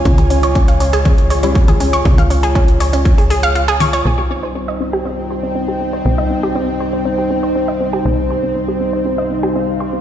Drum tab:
HH |xxoxxxoxxxoxxxox|xxoxxxoxxooxxxox|----------------|----------------|
CG |-O------O----O--|-O------------O-|----------------|----------------|
BD |o---o---o---o---|o---o---o-------|----------------|----------------|

HH |----------------|
CG |----------------|
BD |----------------|